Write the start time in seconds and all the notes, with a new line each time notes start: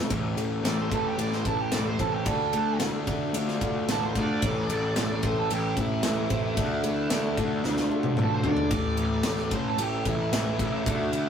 0.10 A1 A2 E3 A3, kick, ride
0.37 A1 A3, ride
0.62 A1 A2 E3 A3 D5, snare, ride
0.81 C5
0.90 A1 A2 E3 A3, kick, ride
0.94 A4
1.06 G4
1.17 A1 A2 E3 A3 E4 D5, ride
1.32 C5, snare
1.45 A1 A3 A4, kick, ride
1.60 G4
1.72 A1 A2 E3 A3 D5, snare, ride
1.87 C5
1.99 A1 A2 E3 A3 C4 A4, kick, ride
2.12 G4
2.26 D2 D3 A3 D4 A4, kick, ride
2.53 D2 A3, ride
2.79 D2 D3 A3 D4, snare, ride
3.06 D2 D3 A3 D4, kick, ride
3.33 D2 D3 A3 D4 F4, ride
3.48 snare
3.61 D2 A3, kick, ride
3.88 A1 D3 A3 D4 A4, snare, ride
4.05 C5
4.15 D2 D3 A3 D4 D5, kick, ride
4.42 A1 A2 E3 A3, kick, ride
4.69 A1 A3, ride
4.96 A1 A2 E3 A3, snare, ride
5.23 A1 A2 E3 A3 C5, kick, ride
5.39 A4
5.50 A1 A2 E3 A3 E4 G4, ride
5.77 A1 A3 E4, kick, ride
6.03 A1 A2 E3 A3, snare, ride
6.30 A1 A2 E3 A3 C4, kick, ride
6.56 D2 D3 A3 D4, kick, ride
6.84 D2 A3, ride
7.10 D2 D3 A3 D4, snare, ride
7.37 D2 D3 A3 D4, kick, ride
7.63 D2 D3 A3 D4 F4, snare
7.77 snare
7.90 D2 A3
8.03 high tom
8.16 A1 D3 A3 D4, mid tom
8.22 A4
8.34 C5
8.44 D2 D3 A3 D4 D5, floor tom
8.57 floor tom
8.71 A1 A2 E3 A3, kick, ride
8.97 A1, ride
9.23 A1 A2 E3 A3, snare, ride
9.51 A1 A2 E3 A3 C5, kick, ride
9.68 A4
9.77 A1 A2 E3 A3 G4, ride
10.05 A1 E4, kick, ride
10.32 A1 A2 E3 A3, snare, ride
10.59 A1 A2 E3 A3, kick, ride
10.86 D2 D3 A3 D4, kick, ride
11.13 D2, ride